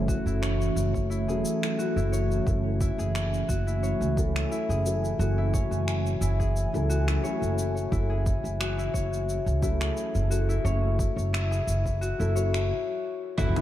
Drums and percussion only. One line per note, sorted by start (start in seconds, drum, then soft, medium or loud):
0.08 kick loud
0.08 shaker medium
0.27 shaker soft
0.43 finger snap medium
0.43 shaker soft
0.61 shaker soft
0.77 shaker medium
0.94 kick medium
0.94 shaker soft
1.11 shaker soft
1.29 shaker soft
1.45 shaker medium
1.63 finger snap medium
1.63 shaker soft
1.79 shaker soft
1.98 shaker soft
2.13 shaker medium
2.31 shaker soft
2.47 kick loud
2.47 shaker soft
2.81 kick loud
2.81 shaker medium
2.99 shaker soft
3.15 finger snap medium
3.15 shaker soft
3.34 shaker soft
3.49 kick medium
3.49 shaker medium
3.68 shaker soft
3.84 shaker soft
4.02 shaker soft
4.17 kick loud
4.17 shaker medium
4.36 finger snap medium
4.36 shaker soft
4.52 shaker soft
4.70 shaker soft
4.86 shaker medium
5.05 shaker soft
5.20 shaker soft
5.54 kick loud
5.54 shaker medium
5.72 shaker soft
5.88 finger snap medium
5.88 shaker soft
6.06 shaker soft
6.22 shaker medium
6.40 kick medium
6.40 shaker soft
6.56 shaker soft
6.75 shaker soft
6.90 shaker medium
7.08 finger snap medium
7.08 shaker soft
7.25 shaker soft
7.43 shaker soft
7.58 shaker medium
7.77 shaker soft
7.92 kick loud
7.92 shaker soft
8.26 kick loud
8.26 shaker medium
8.45 shaker soft
8.61 finger snap medium
8.61 shaker soft
8.79 shaker soft
8.94 kick medium
8.94 shaker medium
9.13 shaker soft
9.29 shaker soft
9.47 shaker soft
9.63 kick loud
9.63 shaker medium
9.81 finger snap medium
9.81 shaker soft
9.97 shaker soft
10.15 shaker soft
10.32 shaker medium
10.50 shaker soft
10.66 shaker soft
10.99 kick loud
10.99 shaker medium
11.18 shaker soft
11.34 finger snap medium
11.34 shaker soft
11.52 shaker soft
11.68 shaker medium
11.86 kick medium
11.86 shaker soft
12.02 shaker soft
12.20 shaker soft
12.37 shaker medium
12.54 finger snap medium
12.54 shaker soft
13.38 kick loud
13.38 shaker soft
13.56 closed hi-hat soft
13.56 low conga medium
13.56 shaker soft